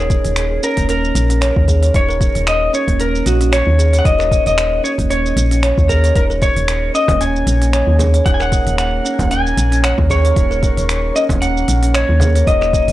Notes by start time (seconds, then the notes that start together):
Already playing: D#1 G#4
0.10 kick, open hi-hat, shaker
0.25 D#1, open hi-hat, shaker
0.36 finger snap, open hi-hat, shaker
0.63 C#4 A#4, shaker
0.77 D#1 A#3, kick, open hi-hat, shaker
0.89 C#4 A#4, open hi-hat, shaker
1.04 shaker
1.15 A#1, open hi-hat, shaker
1.30 C#4, open hi-hat, shaker
1.41 C#5, finger snap, open hi-hat, shaker
1.56 D#2, kick
1.68 G#4, kick, open hi-hat, shaker
1.82 C#5, open hi-hat, shaker
1.94 D#1 D#4 C#5, kick, open hi-hat, shaker
2.09 A#4, shaker
2.21 kick, open hi-hat, shaker
2.35 D#1, open hi-hat, shaker
2.47 D#5, finger snap, open hi-hat, shaker
2.73 C#4 C#5, shaker
2.88 D#1 A#3, kick, open hi-hat, shaker
3.00 C#4 A#4, open hi-hat, shaker
3.15 shaker
3.26 A#1 F#4, open hi-hat, shaker
3.41 C#4, open hi-hat, shaker
3.52 C#5, finger snap, open hi-hat, shaker
3.67 D#2
3.78 G#4, open hi-hat, shaker
3.93 C#5, open hi-hat, shaker
3.99 F#5
4.05 D#1 D#4 D#5, kick, open hi-hat, shaker
4.19 A#4, finger snap, shaker
4.31 kick, open hi-hat, shaker
4.46 D#1 D#5, open hi-hat, shaker
4.58 finger snap, open hi-hat, shaker
4.84 C#4 C#5, shaker
4.98 D#1 A#3, kick, open hi-hat, shaker
5.10 C#4 C#5, open hi-hat, shaker
5.26 shaker
5.36 A#1, open hi-hat, shaker
5.51 C#4, open hi-hat, shaker
5.63 C#5, finger snap, open hi-hat, shaker
5.78 D#2, kick, shaker
5.89 G#4 A#4, kick, open hi-hat, shaker
6.04 C#5, open hi-hat, shaker
6.15 D#1 A#3 D#4 A#4, kick, open hi-hat, shaker
6.30 A#4, shaker
6.42 C#5, kick, open hi-hat, shaker
6.56 D#1, open hi-hat, shaker
6.68 finger snap, open hi-hat, shaker
6.94 C#4 D#5, shaker
7.08 D#1 A#3, kick, open hi-hat, frame drum, shaker
7.21 C#4 G#5, open hi-hat, shaker
7.36 shaker
7.47 A#1, open hi-hat, shaker
7.61 C#4, open hi-hat, shaker
7.73 C#5, finger snap, open hi-hat, shaker
7.87 D#2
7.99 G#4, open hi-hat, frame drum, shaker
8.14 C#5, open hi-hat, shaker
8.25 D#1 D#4 F#5, kick, open hi-hat, shaker
8.34 G#5
8.40 A#4 F#5, finger snap, shaker
8.52 kick, open hi-hat, shaker
8.66 D#1, open hi-hat, shaker
8.78 F#5, finger snap, open hi-hat, shaker
9.05 C#4, shaker
9.19 D#1 A#3, kick, open hi-hat, frame drum, shaker
9.31 C#4 G#5, open hi-hat, shaker
9.47 shaker
9.57 A#1, open hi-hat, shaker
9.72 C#4, open hi-hat, shaker
9.84 C#5 F#5, finger snap, open hi-hat, shaker
9.98 D#2, kick, frame drum
10.10 G#4 C#5, kick, open hi-hat, shaker
10.25 C#5, open hi-hat, shaker
10.36 D#1 D#4, kick, open hi-hat, shaker
10.51 A#4, shaker
10.63 kick, open hi-hat, shaker
10.77 D#1, open hi-hat, shaker
10.89 finger snap, open hi-hat, shaker
11.15 C#4 D#5, shaker
11.29 D#1 A#3, kick, open hi-hat, frame drum, shaker
11.42 C#4 F#5, open hi-hat, shaker
11.57 shaker
11.68 A#1, open hi-hat, shaker
11.83 C#4, open hi-hat, shaker
11.94 C#5, finger snap, open hi-hat, shaker
12.09 D#2
12.20 G#4, open hi-hat, frame drum, shaker
12.35 C#5, open hi-hat, shaker
12.47 D#1 D#4 D#5, kick, open hi-hat, shaker
12.61 A#4, finger snap, shaker
12.73 kick, open hi-hat, shaker
12.88 D#1, open hi-hat, shaker